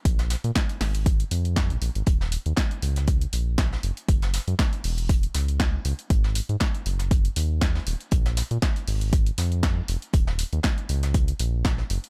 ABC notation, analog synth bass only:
X:1
M:4/4
L:1/16
Q:"Swing 16ths" 1/4=119
K:Ebm
V:1 name="Analog synth bass" clef=bass
B,,,2 z B,, z2 A,,,3 z F,,3 B,,, B,,, A,,, | E,,,2 z E,, z2 D,,3 z B,,,3 z G,,, z | G,,,2 z G,, z2 _F,,,3 z D,,3 z D,, z | A,,,2 z A,, z2 G,,,3 z E,,3 z E,,, z |
B,,,2 z B,, z2 A,,,3 z F,,3 z F,,, z | E,,,2 z E,, z2 D,,3 z B,,,3 z G,,, z |]